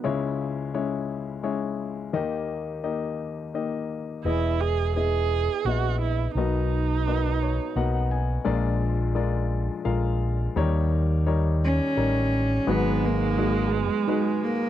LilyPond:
<<
  \new Staff \with { instrumentName = "Grand piano" } { \time 3/4 \key gis \minor \tempo 4 = 86 << { r2. | r2. | r2. | r4. cis''8 dis''16 fis''16 gis''8 |
r2. | r2. | r2. | } \\ { <gis cis' e' cis''>4 <gis cis' e' cis''>4 <gis cis' e' cis''>4 | <ais dis' g' dis''>4 <ais dis' g' dis''>4 <ais dis' g' dis''>4 | <b e' gis' dis''>4 <b e' gis' dis''>4 <b e' gis' dis''>4 | <b fis' ais' dis''>4 <b fis' ais' dis''>4 <b fis' ais' fis''>4 |
<gis eis' ais' d''>4 <gis eis' ais' d''>4 <gis eis' ais' eis''>4 | <g dis' ais' cis''>4 <g dis' ais' cis''>4 <g dis' ais' cis''>4 | <gis dis' fis' b'>4 <gis dis' fis' gis'>4 <gis dis' fis' b'>4 | } >> }
  \new Staff \with { instrumentName = "Grand piano" } { \clef bass \time 3/4 \key gis \minor <cis, cis>2. | <dis, dis>2. | <e, e>2. | <b,, b,>2. |
<ais,, ais,>2. | <dis, dis>2. | <gis,, gis,>2. | }
  \new Staff \with { instrumentName = "Viola" } { \time 3/4 \key gis \minor r2. | r2. | e'8 gis'8 gis'4 fis'8 e'8 | dis'2~ dis'8 r8 |
r2. | r2. | gis2. | }
  \new Staff \with { instrumentName = "Felt piano" } { \time 3/4 \key gis \minor r2. | r2. | r2. | r2. |
r2. | r2. | fis8 dis'8 <dis' gis'>8 b8 dis'4 | }
  \new Staff \with { instrumentName = "Cello" } { \time 3/4 \key gis \minor r2. | r2. | r2. | r2. |
r2. | r4. cis'4. | b8 ais4 gis8 gis8 ais8 | }
  \new Staff \with { instrumentName = "Fingered electric bass" } { \clef bass \time 3/4 \key gis \minor r2. | r2. | e,,2 ais,,4 | b,,2 b,,4 |
ais,,2 ais,,4 | dis,2 a,,4 | gis,,2 r4 | }
>>